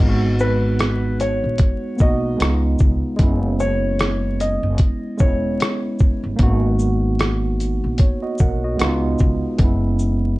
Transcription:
Already playing: tine electric piano G#3 B3
0.00 upright bass G#1, tine electric piano D#4 F4
0.08 tine electric piano F#4
0.39 felt piano B4, shaker
0.79 cross-stick, closed hi-hat
1.20 felt piano C#5, closed hi-hat, shaker
1.44 upright bass A#1
1.58 kick, closed hi-hat
1.97 tine electric piano A#3 B3, kick, shaker
2.01 upright bass B1, tine electric piano D#4 F#4, felt piano D#5
2.37 upright bass C#2, tine electric piano G#3 B3, closed hi-hat
2.41 tine electric piano D#4 F4, cross-stick
2.79 upright bass C#2, kick, shaker
3.17 upright bass F#1, tine electric piano G#3 B3, kick, closed hi-hat
3.21 tine electric piano C#4 E4
3.59 felt piano C#5, shaker
3.99 cross-stick, closed hi-hat
4.40 felt piano D#5, closed hi-hat, shaker
4.63 upright bass F#1
4.78 kick, closed hi-hat
5.17 upright bass E1, tine electric piano G#3 B3, felt piano C#5, kick, shaker
5.21 tine electric piano C#4 E4
5.60 cross-stick, closed hi-hat
5.99 kick, shaker
6.24 upright bass G1
6.36 upright bass G#1, tine electric piano A#3 B3, kick, closed hi-hat
6.41 tine electric piano D#4 F#4
6.79 shaker
7.19 cross-stick, closed hi-hat
7.60 closed hi-hat, shaker
7.84 upright bass A#1
7.98 tine electric piano C#5, kick, closed hi-hat
8.23 tine electric piano F#4 D#5
8.38 upright bass B1, tine electric piano A#4 F#5, kick, shaker
8.64 tine electric piano F#4 D#5
8.77 upright bass C#2, tine electric piano G#3 B3, closed hi-hat
8.81 tine electric piano D#4 F4, cross-stick
9.18 upright bass C#2, kick, shaker
9.58 upright bass F#1, tine electric piano G#3 B3, kick, closed hi-hat
9.62 tine electric piano C#4 E4
9.99 shaker

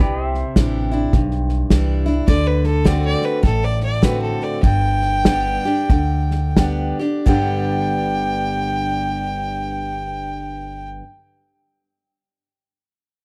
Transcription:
0.00 upright bass C2, steel-string acoustic guitar C3, pedal steel guitar G4 B4 D5
0.20 pedal steel guitar C5
0.26 pedal steel guitar E5
0.34 snare
0.56 upright bass A1, steel-string acoustic guitar E3 G3 D4 E4, kick, snare, hi-hat pedal
0.92 steel-string acoustic guitar D4 E4, snare
1.13 upright bass B1, steel-string acoustic guitar G2, kick, snare
1.31 snare
1.49 snare
1.70 upright bass C2, steel-string acoustic guitar E3 G3 D4 E4, kick, snare, hi-hat pedal
2.06 steel-string acoustic guitar D4 E4, snare
2.27 upright bass D2, steel-string acoustic guitar D3, fiddle D5, kick, snare
2.47 fiddle B4
2.64 fiddle A4, snare
2.85 steel-string acoustic guitar D3 A3 C4 F#4, fiddle D5, kick, snare, hi-hat pedal
3.05 fiddle D5
3.22 fiddle B4, snare
3.43 upright bass A1, steel-string acoustic guitar A2, fiddle A4, kick, snare
3.62 fiddle D5, snare
3.80 fiddle D5, snare
4.02 steel-string acoustic guitar D3 A3 C4 F#4, fiddle B4, kick, snare, hi-hat pedal
4.22 fiddle A4
4.40 fiddle D5, snare
4.63 upright bass G1, steel-string acoustic guitar G2, fiddle G5, kick, snare
5.02 snare
5.25 steel-string acoustic guitar G3 B3 D4 G4, kick, snare, hi-hat pedal
5.65 steel-string acoustic guitar D4 G4, snare
5.89 upright bass D2, steel-string acoustic guitar D3, kick, snare
6.31 snare
6.56 steel-string acoustic guitar G3 B3 D4 G4, kick, snare, hi-hat pedal
6.99 steel-string acoustic guitar D4 G4, snare
7.26 upright bass G1, steel-string acoustic guitar G2 D3 G3 B3 D4 G4, fiddle G5, kick, crash

